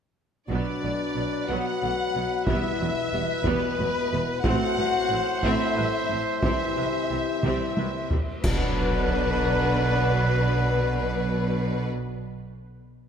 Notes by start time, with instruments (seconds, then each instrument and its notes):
0.48 double bass section B1, cello section B2, trombone section B2 F#3, viola section F#3 B3, french horn section D4, trumpet B4, violin section D5, taiko
0.83 double bass section B1, cello section B2, viola section E3 A3
1.15 double bass section B1, cello section B2, viola section F#3 B3
1.46 double bass section B1, cello section B2, viola section F#3 B3, french horn section F#4, violin section F#5
1.82 double bass section B1, cello section B2, viola section E3 A3
2.14 double bass section B1, cello section B2, viola section F#3 B3
2.47 double bass section E1, cello section E2, trombone section E3, viola section G3 B3, french horn section E4, violin section E5, taiko
2.80 double bass section E1, cello section E2, viola section F#3 A3
3.13 double bass section E1, cello section E2, viola section G3 B3
3.44 double bass section E1, cello section E2, viola section G3 B3, french horn section B3, violin section B4, taiko
3.78 double bass section E1, cello section E2, viola section F#3 A3
4.12 double bass section E1, cello section E2, viola section G3 B3
4.43 double bass section A1, trombone section A2 A3, cello section A2, viola section A3 C4, french horn section F#4, trumpet C5, violin section F#5, taiko
4.77 double bass section A1, cello section A2, viola section G3 B4
5.10 double bass section A1, cello section A2, viola section A3 C4
5.42 double bass section A1, cello section A2, viola section A3 C4, french horn section E4, violin section E5, taiko
5.76 double bass section A1, cello section A2, viola section G3 B4
6.09 double bass section A1, cello section A2, viola section A3 C4
6.41 double bass section C2, trombone section C3 E3, cello section C3, viola section G3 C4, french horn section E4, violin section E5, taiko
6.76 double bass section C2, cello section C3, viola section F#3 B4
7.10 double bass section C2, cello section C3, viola section G3 C4
7.43 double bass section C2, cello section C3, viola section G3 C4, taiko mid
7.77 double bass section C2, cello section C3, viola section F#3 B4, taiko high
8.11 double bass section C2, cello section C3, viola section G3 C4, taiko low
8.44 double bass section B1, cello section B2, trombone section D3 F#3, french horn section B3, viola section D4, violin section B4, trumpet B4, concert bass drum, taiko, crash